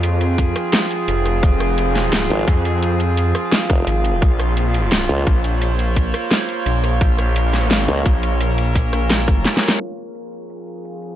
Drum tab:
HH |x--x--x--x--x--x--x--x--|x--x--x--x--x--x--x--x--|x--x--x--x--x--x--x--x--|x--x--x--x--x--x--x--x--|
SD |---------r--o--------r--|---r-----o--o-----------|---------r--o--r--------|---r--------o-----------|
BD |------o-----------------|o-----------------o-----|---------------o--------|o-----------------o-----|

HH |x--x--x--x--x--x--x--x--|x--x--x--x--x--x--x--x--|x--x--x--x--x--x--x--x--|x--x--x--x--x--x--x--x--|
SD |---------r--o--------r--|---r-----o--o-----------|---------r--o--r--o-o-o-|------------------------|
BD |------o-----------------|o-----------------o-----|------o--------o--------|------------------------|